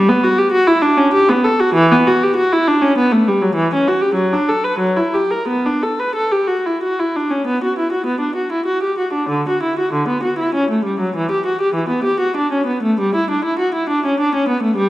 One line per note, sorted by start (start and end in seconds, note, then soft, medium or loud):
0.09 0.23 B3 medium
0.23 0.38 F#4 medium
0.38 0.53 G4 medium
0.52 0.67 F#4 medium
0.67 0.82 E4 medium
0.82 0.97 D4 medium
0.98 1.13 C#4 medium
1.13 1.28 G4 medium
1.29 1.44 B3 medium
1.44 1.59 A4 medium
1.60 1.76 F#4 medium
1.74 1.90 E3 medium
1.92 2.07 B3 medium
2.07 2.22 F#4 medium
2.23 2.37 G4 medium
2.36 2.51 F#4 medium
2.52 2.67 E4 medium
2.68 2.82 D4 medium
2.82 2.97 C#4 medium
2.98 3.12 B3 medium
3.12 3.27 A3 medium
3.28 3.42 G3 medium
3.42 3.56 F#3 medium
3.55 3.70 E3 medium
3.74 3.87 C#4 medium
3.88 4.02 F#4 medium
4.01 4.16 G4 medium
4.14 4.30 F#3 medium
4.33 4.48 D4 medium
4.49 4.64 A4 medium
4.64 4.80 B4 medium
4.79 4.95 F#3 medium
4.97 5.13 E4 medium
5.14 5.30 G4 medium
5.31 5.48 A#4 medium
5.48 5.65 B3 medium
5.66 5.82 D4 medium
5.83 5.99 A4 soft
6.00 6.16 B4 soft
6.15 6.31 A4 medium
6.32 6.48 G4 medium
6.47 6.64 F#4 medium
6.66 6.81 E4 soft
6.83 6.98 F#4 soft
6.99 7.15 E4 soft
7.16 7.31 D4 soft
7.30 7.46 C#4 soft
7.47 7.62 B3 medium
7.64 7.78 F#4 soft
7.78 7.93 E4 soft
7.92 8.07 F#4 soft
8.06 8.22 B3 medium
8.20 8.37 D4 soft
8.35 8.52 F#4 medium
8.52 8.68 E4 soft
8.66 8.82 F#4 medium
8.83 8.99 G4 soft
8.98 9.15 F#4 soft
9.13 9.30 D4 soft
9.29 9.46 D3 medium
9.49 9.64 F#4 medium
9.63 9.78 E4 soft
9.79 9.94 F#4 soft
9.93 10.08 D3 soft
10.08 10.23 B3 soft
10.23 10.38 F#4 medium
10.38 10.54 E4 medium
10.54 10.69 C#4 medium
10.71 10.85 A3 soft
10.85 11.00 G3 soft
11.00 11.15 F#3 soft
11.16 11.30 E3 medium
11.31 11.46 G4 soft
11.46 11.61 F#4 medium
11.61 11.76 G4 medium
11.74 11.90 E3 medium
11.89 12.05 B3 medium
12.04 12.20 G4 medium
12.20 12.36 F#4 medium
12.37 12.52 D4 medium
12.52 12.67 C#4 soft
12.66 12.82 B3 soft
12.83 12.98 A3 medium
13.00 13.15 G3 medium
13.15 13.29 E4 medium
13.30 13.44 D4 medium
13.45 13.59 E4 medium
13.59 13.73 F#4 medium
13.74 13.88 E4 medium
13.89 14.03 D4 medium
14.06 14.19 C#4 medium
14.20 14.34 D4 medium
14.35 14.48 C#4 medium
14.48 14.63 B3 medium
14.63 14.77 A3 medium
14.76 14.89 G3 medium